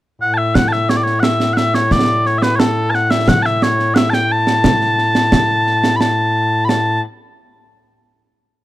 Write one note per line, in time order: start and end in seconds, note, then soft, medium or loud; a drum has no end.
0.21 7.01 A2 medium
0.21 0.34 F#5 medium
0.34 0.55 E5 medium
0.34 0.38 A5 medium
0.55 0.68 F#5 medium
0.55 concert bass drum medium
0.55 snare medium
0.68 0.73 A5 medium
0.72 0.89 E5 medium
0.72 snare soft
0.89 0.96 C#5 medium
0.89 snare medium
0.96 1.03 D5 medium
1.03 1.20 C#5 medium
1.03 snare soft
1.20 1.53 E5 medium
1.20 1.24 F#5 medium
1.20 snare medium
1.40 snare medium
1.53 1.74 E5 medium
1.53 1.57 F#5 medium
1.53 snare medium
1.74 1.92 C#5 medium
1.74 snare medium
1.91 2.26 D5 loud
1.91 concert bass drum medium
1.91 snare medium
2.08 snare soft
2.26 2.38 C#5 medium
2.26 snare soft
2.38 2.42 E5 medium
2.42 2.56 B4 medium
2.42 snare medium
2.56 2.91 A4 medium
2.56 2.59 C#5 medium
2.56 snare loud
2.91 2.95 A5 loud
2.91 snare soft
2.95 3.11 F#5 loud
3.11 3.28 E5 medium
3.11 snare medium
3.28 3.42 F#5 loud
3.28 concert bass drum medium
3.28 snare medium
3.42 3.63 E5 medium
3.42 3.46 A5 medium
3.42 snare soft
3.62 3.94 C#5 medium
3.62 snare medium
3.79 snare soft
3.94 4.10 E5 medium
3.94 3.97 F#5 medium
3.94 snare loud
4.10 4.32 G5 medium
4.10 4.14 A5 medium
4.10 snare medium
4.32 5.96 A5 loud
4.47 snare medium
4.64 concert bass drum medium
4.64 snare loud
4.81 snare soft
4.98 snare soft
5.15 snare medium
5.32 concert bass drum medium
5.32 snare loud
5.67 snare soft
5.84 snare medium
5.96 6.01 B5 medium
6.01 6.65 A5 medium
6.01 snare medium
6.65 6.69 B5 medium
6.69 7.01 A5 medium
6.69 snare medium